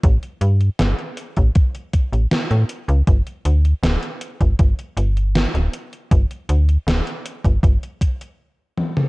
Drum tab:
HH |xxxxxxxxxxxxxxxx|xxxxxxxxxxxxxxxx|xxxxxxxxxxxx----|
SD |----o-------o---|----o-------o---|----o-----------|
T1 |----------------|----------------|--------------o-|
T2 |----------------|----------------|---------------o|
BD |o------oo-o-----|o------oo-------|o------oo-o-----|